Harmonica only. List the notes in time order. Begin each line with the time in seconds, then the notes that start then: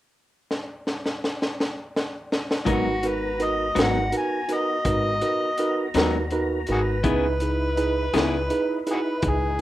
2.71 F#4
3.08 B4
3.44 D#5
3.82 F#5
4.18 G#5
4.54 D#5
6.72 F#4 G#4 B4
8.91 F#4 G#4 B4
9.29 G#4